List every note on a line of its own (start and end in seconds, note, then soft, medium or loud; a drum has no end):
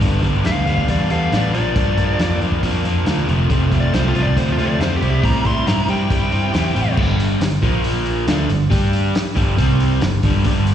0.00 0.19 G1 medium
0.00 0.20 G2 medium
0.00 0.21 D3 medium
0.00 0.21 G3 medium
0.00 0.22 B3 medium
0.00 0.23 D4 medium
0.00 kick loud
0.00 open hi-hat medium
0.21 0.41 G1 medium
0.21 0.43 G2 medium
0.21 0.44 D3 medium
0.21 0.43 G3 medium
0.21 0.44 B3 medium
0.21 0.45 D4 medium
0.21 kick medium
0.21 open hi-hat soft
0.44 0.63 D2 medium
0.44 0.65 G2 medium
0.44 0.66 D3 medium
0.44 0.66 G3 medium
0.44 0.67 B3 medium
0.44 0.67 D4 loud
0.44 0.88 F5 medium
0.44 snare medium
0.44 open hi-hat medium
0.66 0.85 D2 medium
0.66 0.88 G2 medium
0.66 0.88 D3 medium
0.66 0.89 G3 medium
0.66 0.89 B3 medium
0.66 0.90 D4 medium
0.66 open hi-hat soft
0.78 kick medium
0.88 1.07 E2 medium
0.88 1.09 G2 medium
0.88 1.10 D3 medium
0.88 1.10 G3 medium
0.88 1.11 B3 loud
0.88 1.11 D4 medium
0.88 1.10 D5 medium
0.88 kick medium
0.88 open hi-hat medium
1.10 1.28 E2 medium
1.10 1.31 G2 medium
1.10 1.31 D3 medium
1.10 1.32 G3 medium
1.10 1.32 B3 medium
1.10 1.33 D4 medium
1.10 1.32 F5 medium
1.10 open hi-hat soft
1.32 1.54 A1 medium
1.32 1.52 G2 medium
1.32 1.53 D3 medium
1.32 1.53 G3 medium
1.32 1.53 B3 medium
1.32 1.53 D4 loud
1.32 1.53 D5 medium
1.32 snare medium
1.32 open hi-hat medium
1.54 1.72 A#1 medium
1.54 1.75 A#2 medium
1.54 1.76 F3 medium
1.54 1.76 A#3 medium
1.54 1.76 D4 loud
1.54 2.39 D5 medium
1.54 open hi-hat soft
1.76 1.94 G2 medium
1.76 1.97 A#2 medium
1.76 1.98 F3 medium
1.76 1.98 A#3 medium
1.76 1.98 D4 loud
1.76 kick loud
1.76 open hi-hat medium
1.97 2.15 G2 medium
1.97 2.18 A#2 medium
1.97 2.20 F3 medium
1.97 2.19 A#3 medium
1.97 2.20 D4 medium
1.97 kick medium
1.97 open hi-hat soft
2.19 2.37 F2 medium
2.19 2.41 A#2 medium
2.19 2.41 F3 medium
2.19 2.42 A#3 medium
2.19 2.42 D4 medium
2.19 snare medium
2.19 open hi-hat medium
2.42 2.59 F2 medium
2.42 2.63 A#2 medium
2.42 2.63 F3 medium
2.42 2.64 A#3 medium
2.42 2.64 D4 medium
2.42 open hi-hat soft
2.52 kick medium
2.63 2.81 F2 medium
2.63 2.84 A#2 medium
2.63 2.84 F3 medium
2.63 2.85 A#3 medium
2.63 2.86 D4 loud
2.63 kick medium
2.63 open hi-hat medium
2.85 3.03 F2 medium
2.85 3.06 A#2 medium
2.85 3.06 F3 medium
2.85 3.06 A#3 medium
2.85 3.07 D4 medium
2.85 open hi-hat soft
3.06 3.24 D2 medium
3.06 3.27 A#2 medium
3.06 3.27 F3 medium
3.06 3.27 A#3 loud
3.06 3.28 D4 medium
3.06 snare medium
3.06 open hi-hat medium
3.28 3.47 F1 medium
3.28 3.48 F2 medium
3.28 3.49 C3 medium
3.28 3.49 F3 medium
3.28 3.50 A3 medium
3.28 3.51 C4 medium
3.28 open hi-hat soft
3.50 3.68 F1 medium
3.50 3.71 F2 medium
3.50 3.71 C3 medium
3.50 3.72 F3 medium
3.50 3.72 A3 loud
3.50 3.73 C4 loud
3.50 kick loud
3.50 open hi-hat medium
3.72 3.90 F1 medium
3.72 3.92 F2 medium
3.72 3.93 C3 medium
3.72 3.93 F3 medium
3.72 3.94 A3 medium
3.72 3.95 C4 medium
3.72 kick medium
3.72 open hi-hat soft
3.80 3.94 D5 medium
3.93 4.11 C2 medium
3.93 4.14 F2 medium
3.93 4.15 C3 medium
3.93 4.15 F3 loud
3.93 4.15 A3 medium
3.93 4.16 C4 loud
3.93 4.07 C5 medium
3.93 snare medium
3.93 open hi-hat medium
4.08 4.22 F4 medium
4.15 4.33 C2 medium
4.15 4.36 F2 medium
4.15 4.37 C3 medium
4.15 4.37 F3 medium
4.15 4.37 A3 medium
4.15 4.38 C4 medium
4.15 open hi-hat soft
4.23 4.38 D5 medium
4.23 kick medium
4.37 4.55 D2 medium
4.37 4.58 F2 medium
4.37 4.59 C3 medium
4.37 4.59 F3 medium
4.37 4.60 A3 medium
4.37 4.59 C4 medium
4.37 4.51 C5 medium
4.37 kick medium
4.37 open hi-hat medium
4.52 4.66 F4 medium
4.58 4.76 D2 medium
4.58 4.79 F2 medium
4.58 4.80 C3 medium
4.58 4.80 F3 medium
4.58 4.81 A3 medium
4.58 4.81 C4 medium
4.58 open hi-hat soft
4.66 4.80 D5 medium
4.80 4.98 F2 medium
4.80 5.01 F2 medium
4.80 5.01 C3 medium
4.80 5.01 F3 medium
4.80 5.02 A3 medium
4.80 5.02 C4 medium
4.80 4.95 C5 medium
4.80 snare loud
4.80 open hi-hat medium
4.96 5.09 G4 loud
5.02 5.20 C2 medium
5.02 5.22 C3 medium
5.02 5.23 G3 medium
5.02 5.23 C4 medium
5.02 5.24 E4 medium
5.02 open hi-hat soft
5.10 5.24 G4 medium
5.23 5.42 A2 medium
5.23 5.44 C3 medium
5.23 5.44 G3 medium
5.23 5.45 C4 medium
5.23 5.45 E4 medium
5.23 5.46 A#5 medium
5.23 kick loud
5.23 open hi-hat medium
5.45 5.63 A2 medium
5.45 5.66 C3 medium
5.45 5.66 G3 medium
5.45 5.67 C4 medium
5.45 5.67 E4 medium
5.45 5.67 C6 medium
5.45 kick medium
5.45 open hi-hat soft
5.67 5.85 G2 medium
5.67 5.88 C3 medium
5.67 5.88 G3 medium
5.67 5.89 C4 medium
5.67 5.89 E4 loud
5.67 5.89 A#5 medium
5.67 snare loud
5.67 open hi-hat medium
5.88 6.07 G2 medium
5.88 6.09 C3 medium
5.88 6.09 G3 medium
5.88 6.10 C4 medium
5.88 6.11 E4 medium
5.88 6.11 G5 medium
5.88 open hi-hat soft
6.10 6.29 G2 medium
6.10 6.31 C3 medium
6.10 6.31 G3 medium
6.10 6.31 C4 medium
6.10 6.32 E4 loud
6.10 6.96 G5 medium
6.10 kick loud
6.10 open hi-hat medium
6.32 6.51 G2 medium
6.32 6.51 C3 medium
6.32 6.52 G3 medium
6.32 6.53 C4 medium
6.32 6.53 E4 medium
6.32 open hi-hat soft
6.53 6.72 E2 medium
6.53 6.74 C3 medium
6.53 6.74 G3 medium
6.53 6.75 C4 medium
6.53 6.75 E4 medium
6.53 snare loud
6.53 open hi-hat medium
6.75 6.94 A1 medium
6.75 6.96 C3 medium
6.75 6.96 G3 medium
6.75 6.96 C4 medium
6.75 6.97 E4 medium
6.75 open hi-hat soft
6.97 7.38 G1 medium
6.97 7.39 G2 medium
6.97 7.40 D3 loud
6.97 7.41 G3 loud
6.97 kick loud
6.97 crash loud
7.20 open hi-hat medium
7.41 7.61 G1 medium
7.41 7.58 G2 medium
7.41 7.59 D3 medium
7.41 snare loud
7.41 open hi-hat medium
7.62 8.24 A#1 loud
7.62 8.27 A#2 medium
7.62 8.27 F3 medium
7.62 8.28 A#3 medium
7.62 kick loud
7.62 open hi-hat soft
7.84 open hi-hat medium
8.06 open hi-hat medium
8.27 8.48 D2 medium
8.27 8.48 D3 medium
8.27 8.49 A3 medium
8.27 8.49 D4 medium
8.27 snare loud
8.27 open hi-hat medium
8.49 8.70 G1 medium
8.49 8.67 G2 medium
8.49 8.67 D3 medium
8.49 open hi-hat medium
8.71 9.12 G2 medium
8.71 9.14 G3 medium
8.71 9.14 D4 loud
8.71 9.14 G4 medium
8.71 kick loud
8.71 open hi-hat medium
8.93 open hi-hat medium
9.14 muted picked electric bass stroke soft
9.14 muted overdriven electric guitar stroke medium
9.14 snare loud
9.14 open hi-hat medium
9.35 9.57 G1 medium
9.35 9.57 G2 medium
9.35 9.57 D3 medium
9.35 9.57 G3 medium
9.35 kick loud
9.35 open hi-hat medium
9.58 9.99 C2 medium
9.58 10.01 C3 medium
9.58 10.01 G3 medium
9.58 10.01 C4 medium
9.58 kick loud
9.58 open hi-hat medium
9.80 open hi-hat medium
10.01 10.22 G1 medium
10.01 10.19 G2 medium
10.01 10.19 D3 medium
10.01 snare loud
10.01 open hi-hat medium
10.23 10.43 G1 medium
10.23 10.44 G2 medium
10.23 10.45 D3 medium
10.23 10.45 G3 medium
10.23 kick loud
10.23 open hi-hat medium
10.44 10.74 G1 medium
10.44 10.74 G2 medium
10.44 10.74 D3 loud
10.44 10.74 G3 medium
10.44 kick loud
10.44 open hi-hat medium
10.67 open hi-hat medium